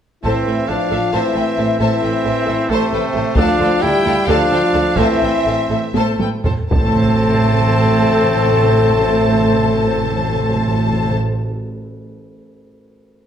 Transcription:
0.22 A1 A2 E3 A3 C4 E4 A4 C5 E5 A5, taiko
0.45 A1 A2 A3 A4 B4 G5
0.67 A1 A2 F3 A3 D4 F4 A4 C5 F5 A5
0.90 A1 A2 A3 A4 E5
1.11 A1 A2 E3 A3 C4 E4 A4 C5 E5 A5
1.34 A1 A2 A3 A4 B4 G5
1.58 A1 A2 A3 A4 C5 A5
1.79 A1 A2 E3 A3 C4 E4 A4 C5 E5 A5
2.02 A1 A2 A3 A4 B4 G5
2.24 A1 A2 A3 A4 C5 A5
2.45 A1 A2 A3 A4 E5
2.68 A1 A2 C3 A3 C4 A4 C5 A5
2.90 A1 A2 A3 A4 B4 G5
3.13 A1 A2 A3 A4 C5 A5
3.36 D2 D3 F3 A3 D4 F4 A4 D5 F5, taiko
3.40 A5
3.58 D2 D3 A3 A4 C5 G5
3.81 D2 D3 G3 A3 E4 G4 A4 D5 G5 A5
4.04 D2 D3 A3 A4 F5
4.26 D2 D3 F3 A3 D4 F4 A4 D5 F5 A5
4.51 D2 D3 A3 A4 C5 G5
4.73 D2 D3 A3 A4 D5 A5
4.96 A1 A2 E3 A3 C4 E4 A4 C5 E5 A5, taiko
5.21 A1 A2 A3 A4 B4 G5
5.46 A1 A2 A3 A4 C5 A5
5.69 A1 A2 A3 A4 E5
5.94 A1 A2 A3 A4 C5 A5, taiko high
6.19 A1 A2 A3 A4 B4 G5, taiko high
6.43 A1 A2 A3 A4 C5 A5, taiko low
6.69 A1 A2 A3 C4 A4 C5 A5, taiko
6.77 A2
6.83 A2
6.89 A2
6.95 A2
7.02 A2
7.08 A2
7.15 A2
7.21 A2
7.28 A2
7.34 A2
7.41 A2
7.48 A2
7.53 A2
7.60 A2
7.66 A2
7.73 A2
7.79 A2
7.85 A2
7.91 A2
7.98 A2
8.04 A2
8.11 A2
8.17 A2
8.23 A2
8.30 A2
8.36 A2
8.43 A2
8.49 A2
8.55 A2
8.62 A2
8.69 A2
8.75 A2
8.88 A2
8.94 A2
9.01 A2
9.07 A2
9.14 A2
9.21 A2
9.27 A2
9.34 A2
9.40 A2
9.46 A2
9.53 A2
9.59 A2
9.66 A2
9.72 A2
9.78 A2
9.85 A2
9.91 A2
9.97 A2
10.04 A2
10.11 A2
10.17 A2
10.23 A2
10.30 A2
10.36 A2
10.42 A2
10.48 A2
10.54 A2
10.61 A2
10.67 A2
10.73 A2
10.80 A2
10.86 A2
10.92 A2
10.99 A2
11.05 A2
11.11 A2

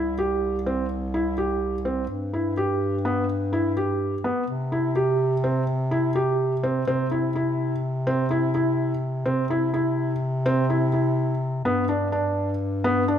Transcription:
Already playing: C2 E4
0.18 G4
0.66 C4
1.14 E4
1.38 G4
1.85 C4
2.10 G2
2.33 E4
2.57 G4
3.05 B3
3.53 E4
3.77 G4
4.24 B3
4.49 C3
4.72 E4
4.96 G4
5.44 C4
5.91 E4
6.15 G4
6.63 C4
6.87 C3 C4
7.11 E4
7.36 E4
8.07 C4
8.31 E4
8.55 E4
9.26 C3 C4
9.50 E4
9.74 E4
10.46 C4
10.70 E4
10.93 E4
11.65 G2 B3
11.89 D4
12.12 D4
12.84 B3
13.08 D4

